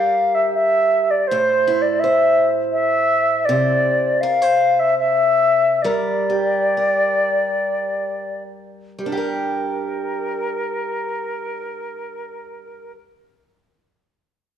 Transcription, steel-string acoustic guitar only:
0, 0, Header, 1, 2, 480
1, 0, Start_track
1, 0, Tempo, 756620
1, 829, Tempo, 723764
1, 830, Time_signature, 3, 2, 24, 8
1, 2269, Tempo, 760456
1, 3229, Tempo, 835655
1, 3709, Tempo, 931677
1, 4189, Tempo, 1069519
1, 4669, Tempo, 1185771
1, 5629, Tempo, 1129944
1, 6109, Tempo, 1181102
1, 6589, Tempo, 1226994
1, 7393, End_track
2, 0, Start_track
2, 0, Title_t, "Steel-string acoustic guitar"
2, 0, Program_c, 0, 25
2, 0, Note_on_c, 0, 55, 57
2, 0, Note_on_c, 0, 62, 43
2, 0, Note_on_c, 0, 67, 35
2, 0, Note_on_c, 0, 70, 48
2, 827, Note_off_c, 0, 55, 0
2, 831, Note_off_c, 0, 70, 0
2, 833, Note_on_c, 0, 45, 60
2, 837, Note_on_c, 0, 72, 50
2, 857, Note_off_c, 0, 62, 0
2, 876, Note_off_c, 0, 67, 0
2, 1073, Note_on_c, 0, 64, 47
2, 1311, Note_off_c, 0, 72, 0
2, 1314, Note_on_c, 0, 72, 50
2, 2271, Note_off_c, 0, 45, 0
2, 2276, Note_on_c, 0, 48, 64
2, 2278, Note_off_c, 0, 72, 0
2, 2280, Note_on_c, 0, 72, 49
2, 2742, Note_off_c, 0, 72, 0
2, 2744, Note_on_c, 0, 70, 55
2, 2763, Note_off_c, 0, 64, 0
2, 2862, Note_off_c, 0, 70, 0
2, 2862, Note_on_c, 0, 72, 42
2, 3709, Note_off_c, 0, 72, 0
2, 3712, Note_off_c, 0, 48, 0
2, 3714, Note_on_c, 0, 55, 57
2, 3716, Note_on_c, 0, 70, 47
2, 3947, Note_on_c, 0, 67, 39
2, 4189, Note_off_c, 0, 70, 0
2, 4191, Note_on_c, 0, 70, 42
2, 5133, Note_off_c, 0, 55, 0
2, 5134, Note_on_c, 0, 55, 46
2, 5165, Note_on_c, 0, 62, 44
2, 5188, Note_off_c, 0, 67, 0
2, 5190, Note_on_c, 0, 67, 43
2, 5209, Note_off_c, 0, 70, 0
2, 5211, Note_on_c, 0, 70, 51
2, 6743, Note_off_c, 0, 55, 0
2, 6772, Note_off_c, 0, 62, 0
2, 6796, Note_off_c, 0, 67, 0
2, 6816, Note_off_c, 0, 70, 0
2, 7393, End_track
0, 0, End_of_file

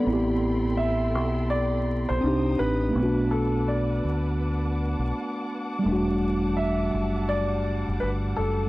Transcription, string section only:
0, 0, Header, 1, 2, 480
1, 0, Start_track
1, 0, Key_signature, 1, "minor"
1, 0, Tempo, 722892
1, 37, Time_signature, 4, 2, 24, 8
1, 5769, End_track
2, 0, Start_track
2, 0, Title_t, "String section"
2, 0, Program_c, 0, 48
2, 0, Note_on_c, 0, 83, 69
2, 34, Note_on_c, 0, 84, 85
2, 35, Note_on_c, 0, 69, 78
2, 35, Note_on_c, 0, 79, 64
2, 1450, Note_off_c, 0, 83, 0
2, 1461, Note_off_c, 0, 69, 0
2, 1461, Note_off_c, 0, 84, 0
2, 1462, Note_off_c, 0, 79, 0
2, 1474, Note_on_c, 0, 60, 69
2, 1474, Note_on_c, 0, 82, 54
2, 1474, Note_on_c, 0, 87, 72
2, 1475, Note_on_c, 0, 79, 55
2, 1950, Note_off_c, 0, 60, 0
2, 1950, Note_off_c, 0, 82, 0
2, 1950, Note_off_c, 0, 87, 0
2, 1951, Note_off_c, 0, 79, 0
2, 1953, Note_on_c, 0, 71, 72
2, 1953, Note_on_c, 0, 86, 81
2, 1954, Note_on_c, 0, 78, 69
2, 1954, Note_on_c, 0, 81, 71
2, 3856, Note_off_c, 0, 71, 0
2, 3873, Note_on_c, 0, 55, 77
2, 5769, Note_off_c, 0, 55, 0
2, 5769, Note_off_c, 0, 78, 0
2, 5769, Note_off_c, 0, 81, 0
2, 5769, Note_off_c, 0, 86, 0
2, 5769, End_track
0, 0, End_of_file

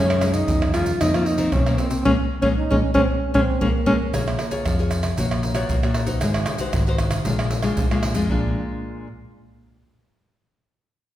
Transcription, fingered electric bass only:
0, 0, Header, 1, 2, 480
1, 0, Start_track
1, 0, Key_signature, -5, "minor"
1, 0, Tempo, 520833
1, 1889, Time_signature, 4, 2, 24, 8
1, 10280, End_track
2, 0, Start_track
2, 0, Title_t, "Fingered electric bass"
2, 0, Program_c, 0, 33
2, 0, Note_on_c, 0, 42, 94
2, 378, Note_off_c, 0, 42, 0
2, 447, Note_on_c, 0, 40, 109
2, 856, Note_off_c, 0, 40, 0
2, 932, Note_on_c, 0, 41, 85
2, 1033, Note_off_c, 0, 41, 0
2, 1060, Note_on_c, 0, 53, 83
2, 1362, Note_off_c, 0, 53, 0
2, 1417, Note_on_c, 0, 35, 94
2, 1618, Note_off_c, 0, 35, 0
2, 1896, Note_on_c, 0, 34, 91
2, 1982, Note_off_c, 0, 34, 0
2, 2242, Note_on_c, 0, 34, 87
2, 2335, Note_off_c, 0, 34, 0
2, 2506, Note_on_c, 0, 34, 95
2, 2588, Note_off_c, 0, 34, 0
2, 2722, Note_on_c, 0, 34, 99
2, 2815, Note_off_c, 0, 34, 0
2, 3088, Note_on_c, 0, 34, 92
2, 3179, Note_off_c, 0, 34, 0
2, 3338, Note_on_c, 0, 34, 85
2, 3423, Note_off_c, 0, 34, 0
2, 3569, Note_on_c, 0, 34, 79
2, 3659, Note_off_c, 0, 34, 0
2, 3813, Note_on_c, 0, 34, 94
2, 4016, Note_off_c, 0, 34, 0
2, 4293, Note_on_c, 0, 41, 92
2, 4700, Note_off_c, 0, 41, 0
2, 4777, Note_on_c, 0, 34, 93
2, 5182, Note_off_c, 0, 34, 0
2, 5254, Note_on_c, 0, 34, 93
2, 5354, Note_off_c, 0, 34, 0
2, 5380, Note_on_c, 0, 46, 85
2, 5580, Note_off_c, 0, 46, 0
2, 5597, Note_on_c, 0, 34, 78
2, 5704, Note_off_c, 0, 34, 0
2, 5736, Note_on_c, 0, 32, 95
2, 5937, Note_off_c, 0, 32, 0
2, 6208, Note_on_c, 0, 32, 99
2, 6616, Note_off_c, 0, 32, 0
2, 6691, Note_on_c, 0, 34, 87
2, 7097, Note_off_c, 0, 34, 0
2, 7168, Note_on_c, 0, 34, 92
2, 7270, Note_off_c, 0, 34, 0
2, 7296, Note_on_c, 0, 46, 87
2, 7497, Note_off_c, 0, 46, 0
2, 7517, Note_on_c, 0, 41, 86
2, 7624, Note_off_c, 0, 41, 0
2, 7651, Note_on_c, 0, 34, 87
2, 7872, Note_off_c, 0, 34, 0
2, 10280, End_track
0, 0, End_of_file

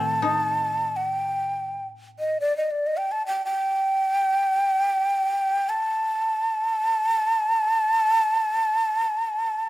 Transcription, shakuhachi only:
0, 0, Header, 1, 2, 480
1, 0, Start_track
1, 0, Tempo, 500000
1, 9305, End_track
2, 0, Start_track
2, 0, Title_t, "Shakuhachi"
2, 0, Program_c, 0, 77
2, 0, Note_on_c, 0, 81, 78
2, 925, Note_on_c, 0, 78, 71
2, 939, Note_off_c, 0, 81, 0
2, 1030, Note_off_c, 0, 78, 0
2, 1030, Note_on_c, 0, 79, 71
2, 1789, Note_off_c, 0, 79, 0
2, 2105, Note_on_c, 0, 75, 64
2, 2287, Note_off_c, 0, 75, 0
2, 2309, Note_on_c, 0, 74, 68
2, 2460, Note_off_c, 0, 74, 0
2, 2465, Note_on_c, 0, 75, 62
2, 2600, Note_on_c, 0, 74, 64
2, 2615, Note_off_c, 0, 75, 0
2, 2753, Note_on_c, 0, 75, 72
2, 2767, Note_off_c, 0, 74, 0
2, 2852, Note_on_c, 0, 79, 76
2, 2867, Note_off_c, 0, 75, 0
2, 2992, Note_on_c, 0, 81, 82
2, 3006, Note_off_c, 0, 79, 0
2, 3129, Note_off_c, 0, 81, 0
2, 3135, Note_on_c, 0, 79, 75
2, 3305, Note_off_c, 0, 79, 0
2, 3314, Note_on_c, 0, 79, 94
2, 5463, Note_on_c, 0, 81, 88
2, 5478, Note_off_c, 0, 79, 0
2, 9305, Note_off_c, 0, 81, 0
2, 9305, End_track
0, 0, End_of_file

